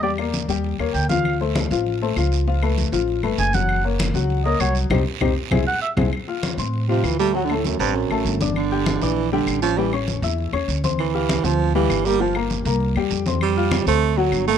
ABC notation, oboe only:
X:1
M:4/4
L:1/8
Q:1/4=197
K:Cdor
V:1 name="Oboe"
d z4 z g f- | f z6 z | z6 _a _g- | _g z4 e _d z |
z4 z _g =e z | [K:F] z8 | z8 | z8 |
z8 | z8 | z8 | z8 |]